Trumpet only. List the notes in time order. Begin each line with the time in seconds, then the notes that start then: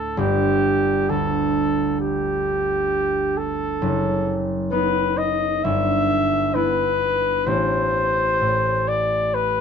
Already playing: A4
0.19 G4
1.10 A4
2.00 G4
3.37 A4
4.72 B4
5.18 D#5
5.64 E5
6.55 B4
7.47 C5
8.88 D5
9.34 B4